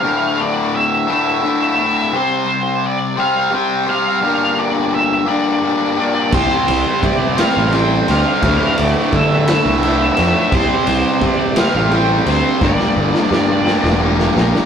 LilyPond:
<<
  \new Staff \with { instrumentName = "Lead electric guitar" } { \time 6/8 \key c \mixolydian \tempo 4. = 57 f''8 d''8 e''8 e''4. | c''4 d''8 f''8 g''8 f''8~ | f''8 d''8 e''8 d''4. | c''4 d''8 f''8 g''8 f''8~ |
f''8 d''8 e''8 e''4. | c''4 d''8 f''8 g''8 c''8 | d''2 r4 | }
  \new Staff \with { instrumentName = "Distorted electric guitar" } { \time 6/8 \key c \mixolydian r2. | r2. | r2. | <c g c' g' c''>8 <c' g' c''>8 <g c' g' c''>8 <c g c' g' c''>8 <g c' g' c''>4 |
<d, a, d a e'>8 <d a e'>8 <a, d a e'>8 <d, a, d a e'>8 <a, d a e'>4 | <c g c' g' c''>8 <c' g' c''>8 <g c' g' c''>8 <c g c' g' c''>8 <g c' g' c''>4 | <g, d g bes d' g'>8 <g bes d' g'>8 <g bes d' g'>8 <g, d g bes d' g'>8 <g bes d' g'>4 | }
  \new Staff \with { instrumentName = "Distorted electric guitar" } { \time 6/8 \key c \mixolydian <d, a, d a e'>4. <d, a, d a e'>8 <a, d a e'>8 <d a e'>8 | <c g c' g' c''>4. <c g c' g' c''>8 <g c' g' c''>8 <c' g' c''>8 | <g, d g bes d' g'>4. <g, d g bes d' g'>8 <g bes d' g'>8 <g bes d' g'>8 | <c g c' g' c''>4. <c g c' g' c''>8 <g c' g' c''>8 <c' g' c''>8 |
<d, a, d a e'>4. <d, a, d a e'>8 <a, d a e'>8 <d a e'>8 | <c g c' g' c''>4. <c g c' g' c''>8 <g c' g' c''>8 <c' g' c''>8 | <g, d g bes d' g'>4. <g, d g bes d' g'>8 <g bes d' g'>8 <g bes d' g'>8 | }
  \new Staff \with { instrumentName = "Fingered electric bass" } { \clef bass \time 6/8 \key c \mixolydian r2. | r2. | r2. | c,16 r16 c,16 r16 c8. a,,8. d,16 r16 |
d,16 r16 d,16 r16 d8. c,8. f,16 r16 | c,16 r16 c,16 r16 c8. a,,8. d,16 r16 | g,,16 r16 g,,16 r16 g,8. e,,8. bes,,16 r16 | }
  \new DrumStaff \with { instrumentName = "Drums" } \drummode { \time 6/8 r4. r4. | r4. r4. | r4. r4. | <cymc bd>8 cymr8 <bd cymr>8 <cymr sn>8 cymr8 cymr8 |
<bd cymr>8 cymr8 <bd cymr>8 <cymr sn>8 cymr8 cymr8 | <bd cymr>8 cymr8 <bd cymr>8 <cymr sn>8 cymr8 cymr8 | <bd sn>16 sn8 sn16 sn8 sn16 sn8 sn16 sn16 sn16 | }
>>